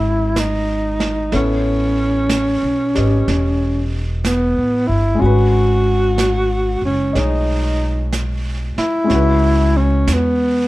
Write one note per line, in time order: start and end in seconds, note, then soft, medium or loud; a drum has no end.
0.00 1.29 G#1 medium
0.00 1.33 E3 soft
0.00 1.30 G#3 soft
0.00 1.34 C#4 soft
0.00 0.41 E4 medium
0.00 1.34 F#4 soft
0.00 1.33 A#4 soft
0.00 1.36 B4 soft
0.36 1.35 D#4 medium
0.36 brush sweep soft
0.36 snare soft
0.36 hi-hat pedal soft
1.00 snare soft
1.32 2.59 A1 medium
1.32 5.21 B3 soft
1.32 4.03 C#4 medium
1.32 5.21 E4 soft
1.32 5.21 A4 soft
1.32 5.21 C#5 soft
1.32 brush sweep soft
1.32 snare soft
2.29 brush sweep soft
2.29 snare soft
2.29 hi-hat pedal medium
2.63 2.93 B1 soft
2.95 3.26 G#1 medium
2.95 5.21 G4 soft
2.95 5.22 B4 soft
2.95 5.22 D#5 soft
2.95 snare soft
3.27 4.52 E1 medium
3.27 brush sweep soft
3.27 snare soft
4.25 4.89 B3 medium
4.25 brush sweep soft
4.25 snare soft
4.25 hi-hat pedal soft
4.58 4.87 A1 soft
4.87 5.19 G1 medium
4.87 5.23 E4 medium
5.15 9.03 G#3 soft
5.15 9.06 C#4 soft
5.21 6.78 G#1 medium
5.21 6.82 F#4 medium
5.21 9.09 F#4 soft
5.21 brush sweep soft
5.26 9.11 B4 soft
6.18 brush sweep soft
6.18 snare soft
6.18 hi-hat pedal medium
6.82 7.13 F#1 medium
6.82 7.20 C#4 medium
7.13 8.72 B1 medium
7.13 9.09 G#4 soft
7.13 9.09 C#5 soft
7.13 9.08 D#5 soft
7.13 brush sweep soft
7.13 snare soft
7.19 8.14 D#4 medium
8.13 brush sweep soft
8.13 snare soft
8.13 hi-hat pedal soft
8.77 9.78 E4 medium
8.77 muted upright bass stroke soft
8.77 snare soft
9.04 10.68 G#3 medium
9.04 10.68 C#4 soft
9.10 10.03 C#2 medium
9.10 10.68 F#4 soft
9.10 brush sweep soft
9.10 snare soft
9.15 10.68 B4 medium
9.77 10.15 C#4 medium
10.07 10.68 E2 medium
10.07 brush sweep soft
10.07 snare soft
10.07 hi-hat pedal soft
10.14 10.68 B3 medium